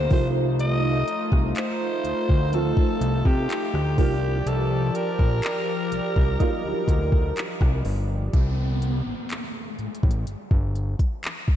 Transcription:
Already playing: analog synth bass D2, grand piano D3 D#3 G3 A#3 C4 G4, alto saxophone C5
0.09 analog synth bass C2, grand piano D#3 F3 A3 C4 F4, analog synth pad A3 D#4 F4, alto saxophone C5, kick, open hi-hat
0.60 alto saxophone D#5, closed hi-hat
1.08 closed hi-hat
1.32 analog synth bass C2, kick, cross-stick
1.56 alto saxophone C5, clap, closed hi-hat
2.04 analog synth bass D2, closed hi-hat
2.29 analog synth bass D2, kick
2.52 grand piano D#3 F3 A3 C4 F4, alto saxophone A4, closed hi-hat
2.77 kick
3.01 analog synth bass C2, closed hi-hat
3.25 analog synth bass C3, alto saxophone G4, kick
3.50 clap, closed hi-hat
3.74 analog synth bass D2, cross-stick
3.97 analog synth bass C2, grand piano D#3 F3 A#3 D4 F4, analog synth pad F3 G4 D5, alto saxophone G4, kick, open hi-hat
4.04 grand piano G3
4.46 analog synth bass C2, alto saxophone A4, closed hi-hat
4.95 alto saxophone A#4, closed hi-hat
5.19 analog synth bass A#1, kick
5.43 clap, closed hi-hat
5.92 analog synth bass C2, closed hi-hat
6.16 analog synth bass C2, kick
6.39 grand piano F#3 A#3 D4 D#4 F4, kick, closed hi-hat
6.46 grand piano G3
6.64 analog synth bass D2
6.88 analog synth bass D2, kick, closed hi-hat
7.12 kick
7.37 clap, closed hi-hat
7.61 analog synth bass C2, kick, cross-stick
7.85 analog synth bass G1, open hi-hat
8.33 analog synth bass C2, kick, closed hi-hat, downlifter
8.82 closed hi-hat
9.06 analog synth bass A1
9.30 clap, closed hi-hat
9.79 analog synth bass A1, closed hi-hat
9.95 closed hi-hat
10.03 analog synth bass A1, kick
10.11 closed hi-hat
10.27 analog synth bass G1, closed hi-hat
10.51 analog synth bass G1, kick
10.76 closed hi-hat
10.99 kick, closed hi-hat
11.24 clap, closed hi-hat
11.48 kick

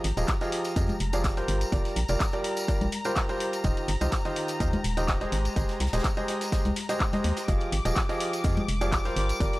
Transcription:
Already playing: violin section A#5
0.04 fm bass G#1, closed hi-hat, open hi-hat
0.17 fm bass D#1, grand piano F3 F4 G4 G#4 D#5, closed hi-hat, tambourine
0.28 kick, snare, clap, closed hi-hat, tambourine
0.41 grand piano F3 F4 G4 G#4 D#5, snare, closed hi-hat, tambourine
0.52 snare, closed hi-hat, open hi-hat
0.64 snare, closed hi-hat, tambourine
0.76 fm bass F2, grand piano F3 F4 G4 G#4 D#5, kick, closed hi-hat, tambourine
0.88 closed hi-hat, tambourine, high conga
1.00 fm bass F1, closed hi-hat, open hi-hat
1.13 grand piano F3 F4 G4 G#4 D5, closed hi-hat, tambourine
1.24 kick, snare, clap, closed hi-hat, tambourine
1.37 grand piano G3 F4 G4 A#4 C5, snare, closed hi-hat, tambourine
1.48 fm bass G1, snare, closed hi-hat, open hi-hat
1.61 closed hi-hat, tambourine
1.72 fm bass G1, grand piano G3 F4 G4 A#4 D5, kick, closed hi-hat, tambourine
1.85 snare, closed hi-hat, tambourine
1.96 fm bass A#1, closed hi-hat, open hi-hat
2.08 fm bass F1, grand piano G3 F4 G4 A#4 D5, closed hi-hat, tambourine
2.20 kick, snare, clap, closed hi-hat, tambourine
2.33 grand piano G3 F4 G4 A#4 D5, closed hi-hat, tambourine
2.44 closed hi-hat, open hi-hat
2.57 snare, closed hi-hat, tambourine
2.68 grand piano G3 F4 G4 A#4 D5, kick, closed hi-hat
2.81 fm bass A#1, closed hi-hat, tambourine, high conga
2.92 closed hi-hat, open hi-hat
3.05 grand piano G3 F4 G4 A#4 C5, closed hi-hat, tambourine
3.16 kick, snare, clap, closed hi-hat, tambourine
3.29 grand piano G3 F4 G4 A#4 C5, closed hi-hat, tambourine
3.40 closed hi-hat, open hi-hat
3.53 snare, closed hi-hat, tambourine
3.64 fm bass D#1, grand piano D#3 F4 G4 C5 D#5, kick, closed hi-hat, tambourine
3.77 closed hi-hat, tambourine
3.88 fm bass G1, closed hi-hat, open hi-hat
4.01 fm bass C2, grand piano D#3 F4 G4 C5 D#5, closed hi-hat, tambourine
4.12 kick, snare, clap, closed hi-hat, tambourine
4.25 grand piano D#3 F4 G4 C5 D#5, snare, closed hi-hat, tambourine
4.36 snare, closed hi-hat, open hi-hat
4.48 snare, closed hi-hat, tambourine
4.60 fm bass D#2, grand piano D#3 F4 G4 C5 D#5, kick, closed hi-hat, tambourine
4.73 closed hi-hat, tambourine, high conga
4.84 fm bass D#1, closed hi-hat, open hi-hat
4.97 grand piano D#3 F4 G4 C5 D#5, closed hi-hat, tambourine
5.08 kick, snare, clap, closed hi-hat, tambourine
5.21 grand piano G#3 G4 G#4 C5 D#5, snare, closed hi-hat, tambourine
5.32 fm bass G#1, snare, closed hi-hat, open hi-hat
5.45 closed hi-hat, tambourine
5.56 fm bass G#1, grand piano G#3 G4 G#4 C5 D#5, kick, closed hi-hat, tambourine
5.69 snare, closed hi-hat, tambourine
5.80 fm bass C2, snare, closed hi-hat, open hi-hat
5.86 snare, closed hi-hat
5.93 fm bass D#1, grand piano G#3 G4 G#4 C5 D#5, snare, closed hi-hat, tambourine
5.99 snare, closed hi-hat
6.04 kick, snare, clap, closed hi-hat, tambourine
6.17 grand piano G#3 G4 G#4 C5 D#5, closed hi-hat, tambourine
6.28 snare, closed hi-hat, open hi-hat
6.41 snare, closed hi-hat, tambourine
6.52 grand piano G#3 G4 G#4 C5 D#5, kick, snare, closed hi-hat, tambourine
6.65 fm bass C2, snare, closed hi-hat, tambourine, high conga
6.76 snare, closed hi-hat, open hi-hat
6.89 grand piano G#3 G4 G#4 C5 D#5, snare, closed hi-hat, tambourine
7.00 kick, snare, clap, closed hi-hat, tambourine
7.13 grand piano G#3 G4 G#4 C5 D#5, snare, closed hi-hat, tambourine, high conga
7.24 fm bass D#2, snare, closed hi-hat, open hi-hat
7.37 snare, closed hi-hat, tambourine
7.48 fm bass F1, grand piano F3 F4 G4 G#4 D#5, violin section D6, kick, closed hi-hat, tambourine
7.60 closed hi-hat, tambourine
7.72 fm bass G#1, closed hi-hat, open hi-hat
7.85 fm bass D#1, grand piano F3 F4 G4 G#4 D#5, closed hi-hat, tambourine
7.96 kick, snare, clap, closed hi-hat, tambourine
8.09 grand piano F3 F4 G4 G#4 D#5, snare, closed hi-hat, tambourine
8.20 snare, closed hi-hat, open hi-hat
8.33 snare, closed hi-hat, tambourine
8.44 fm bass F2, grand piano F3 F4 G4 G#4 D#5, kick, closed hi-hat, tambourine
8.57 closed hi-hat, tambourine, high conga
8.68 fm bass F1, closed hi-hat, open hi-hat
8.81 grand piano F3 F4 G4 G#4 D5, closed hi-hat, tambourine
8.92 kick, snare, clap, closed hi-hat, tambourine
9.05 grand piano G3 F4 G4 A#4 C5, snare, closed hi-hat, tambourine
9.16 fm bass G1, snare, closed hi-hat, open hi-hat
9.29 closed hi-hat, tambourine
9.40 fm bass G1, grand piano G3 F4 G4 A#4 D5, kick, closed hi-hat, tambourine
9.53 snare, closed hi-hat, tambourine

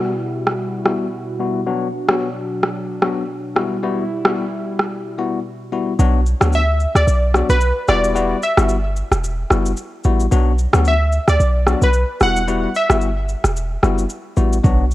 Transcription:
Already playing: analog synth pad B2 G3 E4 F#4, tine electric piano G3 B3 E4 F#4
0.47 cross-stick
0.86 tine electric piano G3 B3 E4 F#4, cross-stick
1.40 tine electric piano G3 B3 E4 F#4
1.66 tine electric piano F#3 B3 D4 F#4, analog synth pad F#3 D4
2.08 tine electric piano F#3 B3 D4 F#4, cross-stick
2.63 cross-stick
3.02 tine electric piano F#3 B3 D4 F#4, cross-stick
3.56 tine electric piano G3 B3 E4 F#4, analog synth pad G3 E4, cross-stick
3.83 tine electric piano G3 B3 E4 F#4
4.25 tine electric piano G3 B3 E4 F#4, cross-stick
4.79 cross-stick
5.18 tine electric piano G3 B3 E4 F#4
5.72 tine electric piano G3 B3 E4 F#4
5.99 808-style bass B1, tine electric piano F#3 B3 D4 F#4, shaker
6.26 shaker
6.41 808-style bass D2, tine electric piano F#3 B3 D4 F#4, cross-stick, shaker
6.53 synth pluck E5, shaker
6.80 shaker
6.95 808-style bass D2, synth pluck D5, cross-stick, shaker
7.07 808-style bass B1, shaker
7.34 tine electric piano F#3 B3 D4 F#4, cross-stick, shaker
7.49 808-style bass B1, synth pluck B4, shaker
7.61 shaker
7.88 808-style bass E1, tine electric piano G3 B3 E4 F#4, synth pluck D5, cross-stick, shaker
8.04 shaker
8.15 tine electric piano G3 B3 E4 F#4, shaker
8.42 synth pluck E5, shaker
8.57 808-style bass G1, tine electric piano G3 B3 E4 F#4, cross-stick, shaker
8.69 shaker
8.96 shaker
9.12 808-style bass E1, cross-stick, shaker
9.24 shaker
9.50 808-style bass F#1, tine electric piano G3 B3 E4 F#4, cross-stick, shaker
9.66 shaker
9.77 shaker
10.04 808-style bass A1, tine electric piano G3 B3 E4 F#4, shaker
10.20 shaker
10.31 808-style bass B1, tine electric piano F#3 B3 D4 F#4, shaker
10.58 shaker
10.73 808-style bass D2, tine electric piano F#3 B3 D4 F#4, cross-stick, shaker
10.85 synth pluck E5, shaker
11.12 shaker
11.28 808-style bass D2, synth pluck D5, cross-stick, shaker
11.40 808-style bass B1, shaker
11.66 tine electric piano F#3 B3 D4 F#4, cross-stick, shaker
11.82 808-style bass B1, synth pluck B4, shaker
11.93 shaker
12.20 808-style bass E1, tine electric piano G3 B3 E4 F#4, synth pluck F#5, cross-stick, shaker
12.36 shaker
12.48 tine electric piano G3 B3 E4 F#4, shaker
12.75 synth pluck E5, shaker
12.89 808-style bass G1, tine electric piano G3 B3 E4 F#4, cross-stick, shaker
13.01 shaker
13.29 shaker
13.44 808-style bass E1, cross-stick, shaker
13.56 shaker
13.83 808-style bass F#1, tine electric piano G3 B3 E4 F#4, cross-stick, shaker
13.98 shaker
14.10 shaker
14.37 808-style bass A1, tine electric piano G3 B3 E4 F#4, shaker
14.53 shaker
14.63 808-style bass B1, tine electric piano F#3 B3 D4 F#4, kick, shaker
14.91 shaker

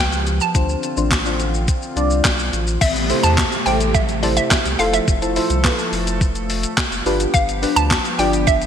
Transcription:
Already playing: analog synth pad F3 B3 G4, synth stab F4 G4 B4
0.00 sub bass C#2, synth pluck G5
0.12 shaker
0.27 closed hi-hat, shaker
0.40 synth pluck A5, shaker
0.55 sub bass D2, analog synth pad D3 C4 F4, synth stab D4 F4 C5, kick, closed hi-hat, shaker
0.69 shaker
0.83 closed hi-hat, shaker
0.97 sub bass A1, synth stab D4 F4 C5, shaker
1.11 kick, snare, clap, closed hi-hat, shaker
1.25 synth stab D4 F4 C5, shaker
1.40 closed hi-hat, shaker
1.54 shaker
1.68 kick, closed hi-hat, shaker
1.82 shaker
1.96 sub bass C2, synth stab D4 F4 D5, closed hi-hat, shaker
2.10 shaker
2.25 sub bass B1, kick, snare, clap, closed hi-hat, shaker
2.39 shaker
2.53 sub bass A1, closed hi-hat, shaker
2.67 shaker
2.81 sub bass A1, analog synth pad C3 A3 G4, synth pluck E5, kick, crash, downlifter, shaker
2.96 closed hi-hat, shaker
3.09 synth stab E4 G4 A4 C5, open hi-hat, shaker
3.23 sub bass E2, synth pluck A5, closed hi-hat, shaker
3.38 kick, snare, clap, shaker
3.52 closed hi-hat, shaker
3.66 sub bass A1, synth stab E4 G4 A4 C5, synth pluck G5, open hi-hat, shaker
3.80 closed hi-hat, shaker
3.94 synth pluck E5, kick, shaker
4.09 closed hi-hat, shaker
4.23 synth stab E4 G4 A4 C5, synth pluck D5, open hi-hat, shaker
4.37 synth pluck E5, closed hi-hat, shaker
4.51 kick, snare, clap, shaker
4.65 sub bass C2, closed hi-hat, shaker
4.79 sub bass F1, analog synth pad F3 A3 A4, synth stab E4 F4 A4 C5, synth pluck F5, open hi-hat, shaker
4.94 synth pluck E5, closed hi-hat, shaker
5.08 sub bass F1, kick, shaker
5.22 synth stab E4 F4 A4 C5, closed hi-hat, shaker
5.36 synth stab E4 F4 A4 C5, open hi-hat, shaker
5.50 sub bass C2, closed hi-hat, shaker
5.64 synth stab E4 F4 A4 B4, kick, snare, clap, shaker
5.79 closed hi-hat, shaker
5.93 sub bass F1, open hi-hat, shaker
6.07 closed hi-hat, shaker
6.21 kick, shaker
6.35 closed hi-hat, shaker
6.50 open hi-hat, shaker
6.63 closed hi-hat, shaker
6.78 kick, snare, clap, shaker
6.92 sub bass F1, closed hi-hat, shaker
7.06 sub bass G1, analog synth pad F3 B3 G4, synth stab D4 F4 G4 B4, open hi-hat, shaker
7.20 closed hi-hat, shaker
7.34 sub bass G1, synth pluck F5, kick, shaker
7.49 closed hi-hat, shaker
7.62 synth stab D4 F4 G4 B4, open hi-hat, shaker
7.76 sub bass D2, synth pluck A5, closed hi-hat, shaker
7.91 kick, snare, clap, shaker
8.05 closed hi-hat, shaker
8.19 sub bass G1, synth stab D4 F4 G4 D5, synth pluck G5, open hi-hat, shaker
8.33 closed hi-hat, shaker
8.47 synth pluck E5, kick, shaker
8.62 closed hi-hat, shaker

